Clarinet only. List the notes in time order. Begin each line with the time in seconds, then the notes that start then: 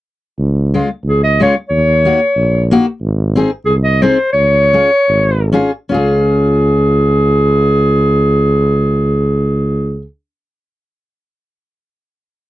1.08 G#4
1.24 D#5
1.42 C#5
1.69 C#5
3.66 G#4
3.84 D#5
4.02 C5
4.33 C#5
5.92 G#4